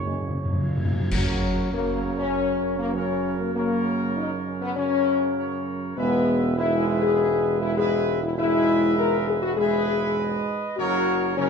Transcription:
Already playing: tuba F#1, trombone section C#3, trumpet section C#5
0.05 timpani F#2, french horn section G#3
0.13 timpani F#2
0.21 timpani F#2
0.27 timpani F#2, french horn section F3
0.37 timpani F#2
0.45 timpani F#2, french horn section F3
0.53 timpani F#2
0.61 timpani F#2
0.69 timpani F#2
0.78 timpani F#2
0.85 timpani F#2
0.93 timpani F#2
1.01 timpani F#2
1.12 tuba F#2, trombone section C#3 F#3, french horn section F#3, trumpet section A#4 C#5, concert bass drum, crash
1.73 trombone section C#3 F#3, french horn section A#3, trumpet section A#4 C#5
2.04 french horn section A#3
2.18 french horn section C#4
2.79 french horn section A#3
2.94 trombone section C#3 F#3, french horn section C#4, trumpet section A#4 C#5
3.40 french horn section A#3
3.55 trombone section C#3 F#3, french horn section A#3, trumpet section A#4 C#5
4.17 french horn section D#4
4.47 french horn section C#4
4.62 french horn section B3
4.76 trombone section C#3 F#3, french horn section C#4, trumpet section A#4 C#5
5.36 trumpet section C#5
5.97 tuba E1, trombone section G#2 G#3, french horn section B3, trumpet section B4 E5
6.56 trombone section G#2 G#3, french horn section E4, trumpet section B4 E5
6.87 french horn section E4
7.02 french horn section G#4
7.62 french horn section E4
7.76 trombone section G#2 G#3, french horn section G#4, trumpet section B4 E5
8.23 french horn section E4
8.37 trombone section G#2 G#3, french horn section E4, trumpet section B4 E5
8.98 french horn section A#4
9.28 french horn section G#4
9.42 french horn section F#4
9.57 trombone section G#2 G#3, french horn section G#4, trumpet section B4 E5
10.18 trumpet section D#5
10.77 tuba F#1, trombone section C#3 F#3, french horn section F#4, trumpet section A#4 C#5
11.37 trombone section C#3 F#3, french horn section C#4, trumpet section A#4 C#5

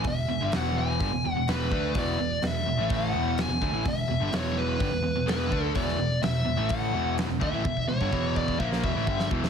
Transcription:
0.04 picked electric bass E1, overdriven electric guitar E2 B2, lead electric guitar E5, kick, open hi-hat
0.29 picked electric bass E1, overdriven electric guitar E2 B2
0.41 picked electric bass G1, overdriven electric guitar G2 D3
0.52 picked electric bass E1, overdriven electric guitar E2 B2 E3, snare, open hi-hat
0.56 lead electric guitar F#5
0.78 lead electric guitar G#5
1.00 picked electric bass G1, overdriven electric guitar G2 D3, kick, open hi-hat
1.13 picked electric bass E1, overdriven electric guitar E2 B2
1.24 picked electric bass E1, overdriven electric guitar E2 B2
1.32 overdriven electric guitar E2 B2, lead electric guitar F#5
1.37 picked electric bass E1
1.47 picked electric bass E1, overdriven electric guitar E2 B2 E3, lead electric guitar B4, snare, open hi-hat
1.71 picked electric bass D2, overdriven electric guitar D3 A3 D4, kick
1.95 picked electric bass E1, overdriven electric guitar E2 B2 E3, lead electric guitar D5, kick, open hi-hat
2.19 picked electric bass E1, overdriven electric guitar E2 B2
2.42 picked electric bass E1, overdriven electric guitar E2 B2, snare, open hi-hat
2.47 lead electric guitar E5
2.66 picked electric bass E1, overdriven electric guitar E2 B2
2.77 picked electric bass A1, overdriven electric guitar A2 E3 A3
2.90 kick, open hi-hat
2.94 lead electric guitar F#5
3.12 picked electric bass E1, overdriven electric guitar E2 B2 E3
3.38 lead electric guitar G#5, snare, open hi-hat
3.48 picked electric bass E1, overdriven electric guitar E2 B2
3.62 picked electric bass D2, overdriven electric guitar D3 A3, kick
3.72 picked electric bass A1, overdriven electric guitar A2 E3
3.85 picked electric bass E1, overdriven electric guitar E2 B2, lead electric guitar E5, kick, open hi-hat
4.07 picked electric bass E1, overdriven electric guitar E2 B2
4.20 picked electric bass G1, overdriven electric guitar G2 D3
4.31 picked electric bass E1, overdriven electric guitar E2 B2 E3, snare, open hi-hat
4.36 lead electric guitar C#5
4.58 lead electric guitar B4
4.79 picked electric bass G1, overdriven electric guitar G2 D3, kick, open hi-hat
4.91 picked electric bass E1, overdriven electric guitar E2 B2
5.03 picked electric bass E1, overdriven electric guitar E2 B2
5.16 picked electric bass E1, overdriven electric guitar E2 B2
5.27 picked electric bass E1, overdriven electric guitar E2 B2 E3, lead electric guitar B4, snare, open hi-hat
5.51 picked electric bass D2, overdriven electric guitar D3 A3 D4, kick
5.75 picked electric bass E1, overdriven electric guitar E2 B2 E3, lead electric guitar D5, kick, open hi-hat
5.89 snare
5.99 picked electric bass E1, overdriven electric guitar E2 B2
6.22 picked electric bass E1, overdriven electric guitar E2 B2, lead electric guitar E5, snare, open hi-hat
6.45 picked electric bass E1, overdriven electric guitar E2 B2
6.57 picked electric bass A1, overdriven electric guitar A2 E3 A3
6.69 lead electric guitar F#5, kick, open hi-hat
6.93 picked electric bass E1, overdriven electric guitar E2 B2 E3
7.18 snare, open hi-hat
7.28 picked electric bass E1, overdriven electric guitar E2 B2
7.40 picked electric bass D2, overdriven electric guitar D3 A3, lead electric guitar E5, kick
7.52 picked electric bass A1, overdriven electric guitar A2 E3
7.63 picked electric bass E1, overdriven electric guitar E2 B2, kick
7.77 kick
7.88 picked electric bass E1, overdriven electric guitar E2 B2, lead electric guitar C#5
8.00 picked electric bass G1, overdriven electric guitar G2 D3, kick
8.12 picked electric bass E1, overdriven electric guitar E2 B2 E3, kick
8.36 lead electric guitar D5, kick
8.48 kick
8.60 picked electric bass A#1, overdriven electric guitar A#2 F3 A#3, lead electric guitar E5, kick
8.72 snare
8.83 picked electric bass E1, overdriven electric guitar E2 B2, lead electric guitar E5, kick
8.95 picked electric bass A1, overdriven electric guitar A2 E3
9.06 picked electric bass G1, overdriven electric guitar G2 D3 G3, kick
9.20 snare
9.30 picked electric bass E1, overdriven electric guitar E2 B2 E3, kick
9.44 snare

